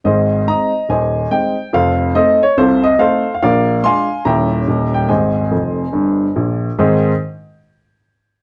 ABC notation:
X:1
M:4/4
L:1/16
Q:"Swing" 1/4=142
K:Ab
V:1 name="Grand piano"
[Ace]4 [eb]4 [cea]4 g4 | [=Acf]4 [Ace]2 d2 [FAc]2 e2 [Acf]3 f | [B=df]4 [fac']4 [_fgb]6 g2 | [cea]12 z4 |
[A,,E,CEAc]2 z12 z2 |]
V:2 name="Grand piano" clef=bass
[A,,,A,,]4 [A,CE]4 [E,,,E,,]4 [A,CE]4 | [F,,,F,,]4 [=A,CE]4 [C,,C,]4 [A,CE]4 | [B,,,B,,]4 [A,=DF]4 [E,,,E,,G,_D_F]4 [E,,,E,,G,DE]4 | [A,,,A,,]4 [F,,,F,,]4 [G,,,G,,]4 [B,,,B,,]4 |
z16 |]